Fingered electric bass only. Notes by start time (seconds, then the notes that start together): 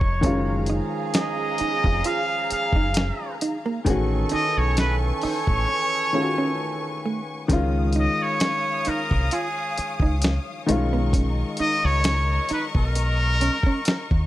Already playing: F1
0.24 F#1
1.61 muted fingered electric bass stroke
1.85 F1
2.52 muted fingered electric bass stroke
2.73 F#1
3.87 A1
4.33 muted fingered electric bass stroke
4.57 B1
5.24 muted fingered electric bass stroke
5.48 A1
7.50 C#2
8.88 muted fingered electric bass stroke
9.12 C2
9.79 muted fingered electric bass stroke
10.01 C#2
10.70 B1
11.60 muted fingered electric bass stroke
11.85 C#2
12.51 muted fingered electric bass stroke
12.76 B1
14.12 D#2